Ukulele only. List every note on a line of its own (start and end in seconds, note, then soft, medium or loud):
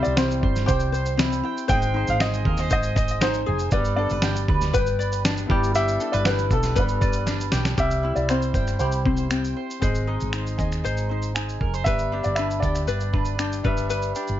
0.00 0.16 C4 medium
0.00 1.43 E4 medium
0.00 0.65 G4 medium
0.17 1.17 C4 medium
0.66 1.68 G4 medium
0.92 1.67 C5 medium
1.17 1.74 C4 medium
1.43 1.74 E4 medium
1.68 2.69 C5 medium
1.94 2.19 D#4 medium
2.21 3.20 D#4 medium
2.71 3.72 C5 medium
2.96 3.77 D#5 medium
3.21 3.77 D#4 medium
3.46 3.73 G#4 medium
3.73 4.73 B4 medium
3.97 4.21 D4 medium
4.22 5.25 D4 medium
4.73 5.50 B4 medium
4.99 7.01 D5 medium
5.25 6.01 D4 medium
5.51 5.75 G4 medium
5.75 7.51 G4 medium
6.01 6.25 D4 medium
6.27 6.82 D4 medium
6.75 7.83 B4 medium
7.01 7.83 D5 medium
7.26 7.83 D4 medium
7.52 7.76 G4 medium
7.78 8.79 G4 medium
8.05 9.88 E4 medium
8.30 9.05 C4 medium
8.54 9.80 C5 medium
8.81 9.81 G4 medium
9.05 9.30 C4 medium
9.31 9.87 C4 medium
9.82 10.83 C5 medium
10.07 11.91 G#4 medium
10.33 11.10 D#4 medium
10.59 11.91 D#5 medium
10.84 11.86 C5 medium
11.11 11.35 D#4 medium
11.36 11.92 D#4 medium
11.87 12.88 B4 medium
12.13 14.16 G4 medium
12.39 13.14 D4 medium
12.64 12.87 D5 medium
12.88 13.65 B4 medium
13.14 13.39 D4 medium
13.39 14.40 D4 medium
13.65 13.89 B4 medium
13.90 14.15 B4 medium
14.16 14.40 G4 medium